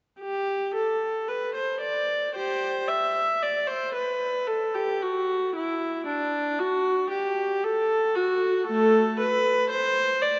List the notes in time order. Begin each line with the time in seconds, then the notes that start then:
0.20 G4
0.74 A4
1.28 B4
1.55 C5
1.81 D5
2.35 G4 C5
2.88 E5
3.42 D5
3.68 C5
3.94 B4
4.47 A4
4.75 G4
5.02 F#4
5.56 E4
6.07 D4
6.60 F#4
7.10 G4
7.64 A4
8.15 F#4
8.67 A3 A4
9.20 B4
9.70 C5
10.22 D5